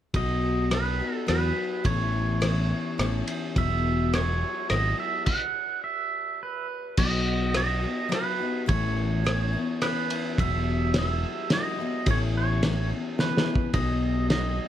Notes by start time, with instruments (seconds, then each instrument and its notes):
0.14 picked electric bass B1, steel-string acoustic guitar B2 F#3 B3 D#4 F#4, pedal steel guitar D#5, kick, ride
0.71 steel-string acoustic guitar F#3 B3 D#4 F#4, pedal steel guitar B4, cross-stick, ride
1.00 steel-string acoustic guitar B3 D#4 F#4
1.14 pedal steel guitar A4
1.27 picked electric bass E2, steel-string acoustic guitar F#3 B3 D#4 F#4, pedal steel guitar B4, cross-stick, ride
1.84 picked electric bass A1, steel-string acoustic guitar A2 E3 B3 C#4 E4, pedal steel guitar C#5, kick, ride
2.41 steel-string acoustic guitar E3 B3 C#4 E4, cross-stick, ride
2.98 picked electric bass A1, steel-string acoustic guitar E3 B3 C#4, cross-stick, ride
3.02 steel-string acoustic guitar E4
3.28 ride
3.56 picked electric bass E1, steel-string acoustic guitar E2 B2 F#3 G#3 B3 E4, pedal steel guitar E5, kick, ride
4.13 steel-string acoustic guitar F#3 G#3 B3 E4, pedal steel guitar C#5, cross-stick, ride
4.70 picked electric bass G#1, steel-string acoustic guitar F#3 G#3 B3 E4, pedal steel guitar D#5, cross-stick, ride
5.00 pedal steel guitar E5
5.26 pedal steel guitar F#5, kick, crash
5.84 pedal steel guitar E5
6.43 pedal steel guitar B4
6.97 picked electric bass B1, steel-string acoustic guitar B2 F#3 B3 D#4 F#4, pedal steel guitar D#5, kick, crash
7.54 steel-string acoustic guitar F#3 B3 D#4, pedal steel guitar D#5, cross-stick, ride
7.59 steel-string acoustic guitar F#4
7.81 steel-string acoustic guitar B3 D#4 F#4
8.09 steel-string acoustic guitar F#3 B3 D#4 F#4, cross-stick, ride
8.15 pedal steel guitar B4
8.39 steel-string acoustic guitar B3 D#4 F#4
8.66 picked electric bass A1, steel-string acoustic guitar A2 E3 B3 C#4 E4, pedal steel guitar C#5, kick, ride
9.24 steel-string acoustic guitar E3 B3 C#4 E4, cross-stick, ride
9.53 steel-string acoustic guitar B3 C#4 E4
9.81 steel-string acoustic guitar E3 B3 C#4 E4, pedal steel guitar B4, cross-stick, ride
10.10 ride
10.38 picked electric bass E1, steel-string acoustic guitar E2 B2 F#3 G#3 B3 E4, pedal steel guitar E5, kick, ride
10.94 steel-string acoustic guitar F#3 G#3 B3 E4, snare, ride
10.98 pedal steel guitar E5
11.50 steel-string acoustic guitar F#3 G#3 B3, pedal steel guitar D#5, snare, ride
11.55 steel-string acoustic guitar E4
11.78 steel-string acoustic guitar F#3 G#3 B3 E4
12.06 picked electric bass A1, steel-string acoustic guitar A2 E3 B3 C#4 E4, kick, ride
12.11 pedal steel guitar C#5
12.37 pedal steel guitar C#5
12.62 steel-string acoustic guitar E3 B3 C#4 E4, snare, ride
12.89 steel-string acoustic guitar B3 C#4 E4
13.19 steel-string acoustic guitar E3 B3 C#4 E4, pedal steel guitar B4, snare
13.37 snare
13.47 steel-string acoustic guitar B3 C#4 E4
13.56 kick
13.74 picked electric bass B1, steel-string acoustic guitar B2 F#3 B3 D#4 F#4, pedal steel guitar D#5, kick, ride
14.30 steel-string acoustic guitar F#3 B3 D#4 F#4, pedal steel guitar D#5, snare, ride